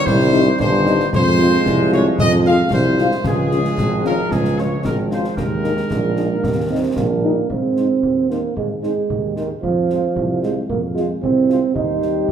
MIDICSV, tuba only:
0, 0, Header, 1, 2, 480
1, 0, Start_track
1, 0, Key_signature, -4, "major"
1, 0, Tempo, 531444
1, 58, Time_signature, 2, 2, 24, 8
1, 11127, End_track
2, 0, Start_track
2, 0, Title_t, "Tuba"
2, 0, Program_c, 0, 58
2, 53, Note_on_c, 0, 36, 98
2, 455, Note_off_c, 0, 36, 0
2, 534, Note_on_c, 0, 31, 99
2, 936, Note_off_c, 0, 31, 0
2, 1012, Note_on_c, 0, 41, 98
2, 1415, Note_off_c, 0, 41, 0
2, 1486, Note_on_c, 0, 36, 91
2, 1892, Note_off_c, 0, 36, 0
2, 1968, Note_on_c, 0, 41, 96
2, 2372, Note_off_c, 0, 41, 0
2, 2444, Note_on_c, 0, 36, 91
2, 2810, Note_off_c, 0, 36, 0
2, 2932, Note_on_c, 0, 37, 86
2, 3334, Note_off_c, 0, 37, 0
2, 3407, Note_on_c, 0, 32, 83
2, 3812, Note_off_c, 0, 32, 0
2, 3889, Note_on_c, 0, 37, 87
2, 4293, Note_off_c, 0, 37, 0
2, 4369, Note_on_c, 0, 32, 80
2, 4772, Note_off_c, 0, 32, 0
2, 4850, Note_on_c, 0, 39, 73
2, 5253, Note_off_c, 0, 39, 0
2, 5334, Note_on_c, 0, 34, 76
2, 5735, Note_off_c, 0, 34, 0
2, 5812, Note_on_c, 0, 39, 71
2, 6214, Note_off_c, 0, 39, 0
2, 6297, Note_on_c, 0, 34, 74
2, 6697, Note_off_c, 0, 34, 0
2, 6780, Note_on_c, 0, 44, 54
2, 7178, Note_off_c, 0, 44, 0
2, 7254, Note_on_c, 0, 39, 52
2, 7656, Note_off_c, 0, 39, 0
2, 7732, Note_on_c, 0, 44, 55
2, 8135, Note_off_c, 0, 44, 0
2, 8214, Note_on_c, 0, 39, 52
2, 8616, Note_off_c, 0, 39, 0
2, 8697, Note_on_c, 0, 41, 54
2, 9098, Note_off_c, 0, 41, 0
2, 9179, Note_on_c, 0, 36, 54
2, 9579, Note_off_c, 0, 36, 0
2, 9665, Note_on_c, 0, 41, 60
2, 10062, Note_off_c, 0, 41, 0
2, 10141, Note_on_c, 0, 36, 57
2, 10502, Note_off_c, 0, 36, 0
2, 10622, Note_on_c, 0, 39, 62
2, 11045, Note_off_c, 0, 39, 0
2, 11127, End_track
0, 0, End_of_file